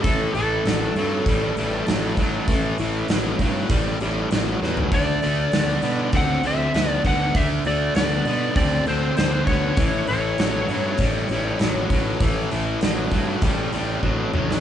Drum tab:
HH |o-o-o-o-o-o-o-o-|o-o-o-o-o-o-o---|o-o-o-o-o-o-o-o-|o-o-o-o-o-o-o-o-|
SD |----o-------o---|----o-------o-o-|----o-------o---|----o-------o---|
T2 |----------------|----------------|----------------|----------------|
FT |----------------|---------------o|----------------|----------------|
BD |o-------o-----o-|o-----o-o-------|o-------o-----o-|o-------o-----o-|

HH |o-o-o-o-o-o-o-o-|o-o-o-o-o-o-----|
SD |----o-------o---|----o----------o|
T2 |----------------|--------------o-|
FT |----------------|----------------|
BD |o-------o-----o-|o-----o-o---o---|